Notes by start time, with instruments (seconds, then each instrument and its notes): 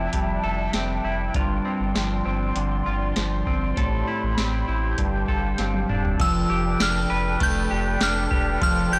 Already playing: clean electric guitar F3 A3 C4 E4 A4, flute section D4 E5 G5 A5
0.13 sub bass F1, clean electric guitar G3, kick, closed hi-hat
0.44 sub bass F1, clean electric guitar A4
0.73 sub bass F1, clean electric guitar C4, snare, closed hi-hat
1.04 sub bass F1, clean electric guitar E4
1.34 sub bass G1, clean electric guitar G2 F4, flute section D5 C6, kick, closed hi-hat
1.65 clean electric guitar C4
1.80 sub bass G1
1.95 sub bass G1, clean electric guitar F3, snare, closed hi-hat
2.25 sub bass G1, clean electric guitar C4
2.56 sub bass G1, clean electric guitar D3, closed hi-hat
2.86 sub bass G1, clean electric guitar F4
3.16 sub bass G1, clean electric guitar F3, snare, closed hi-hat
3.47 sub bass G1, clean electric guitar C4, kick
3.77 sub bass A1, clean electric guitar A2 A4, flute section G4 B5, kick, closed hi-hat
4.08 clean electric guitar E4
4.23 sub bass A1
4.38 sub bass A1, clean electric guitar C4, snare, closed hi-hat
4.68 sub bass A1, clean electric guitar E4
4.97 sub bass G1, clean electric guitar G2, flute section F5 A5, kick, closed hi-hat
5.28 sub bass G1, clean electric guitar A4, kick
5.58 sub bass G1, clean electric guitar C4, snare, closed hi-hat
5.74 high tom
5.89 sub bass E1, clean electric guitar D4, mid tom
6.05 floor tom
6.19 sub bass F1, clean electric guitar F3, flute section D4 A4 B4 G5, synth bell E6, kick, ride
6.50 sub bass F1, clean electric guitar G4
6.80 sub bass F1, clean electric guitar D4, synth bell F6, snare, ride, tambourine
7.10 sub bass F1, clean electric guitar B4
7.40 sub bass F1, clean electric guitar A3, synth bell G6, kick, ride
7.71 sub bass F1, clean electric guitar G4
8.01 sub bass F1, clean electric guitar D4, synth bell F6, snare, ride, tambourine
8.31 sub bass E1, clean electric guitar G4, kick
8.61 sub bass F1, clean electric guitar F3, synth bell F6, kick, ride
8.92 sub bass F1, clean electric guitar G4, synth bell G6